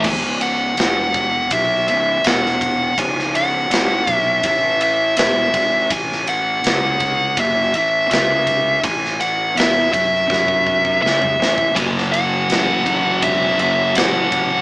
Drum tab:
CC |x---------------|----------------|----------------|----------------|
RD |--x-x-x-x-x-x-x-|x-x-x-x-x-x-x-x-|x-x-x-x-x-x-x-x-|x-x-x-x---------|
SD |----o-------oo--|-o--o-------o---|-o--o-------o---|-o--o---o---o-o-|
T2 |----------------|----------------|----------------|-------------o--|
BD |o-----o-o-----o-|o-----o-o-----o-|o-----o-o-----o-|o-----o-oooo---o|

CC |----------------|
RD |x-x-x-x-x-x-x-x-|
SD |-o--o-------o---|
T2 |----------------|
BD |o-----o-o-----o-|